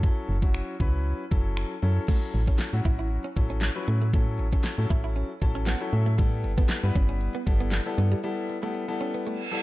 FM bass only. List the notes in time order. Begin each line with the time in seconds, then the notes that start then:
Already playing: F#2
0.29 F#1
0.80 C#2
1.32 F#1
1.83 F#2
2.34 A1
2.73 A2
2.85 A1
3.37 A1
3.88 A2
4.39 A1
4.78 A2
4.90 A1
5.42 A1
5.93 A2
6.44 G1
6.84 G2
6.96 G1
7.47 G1
7.98 G2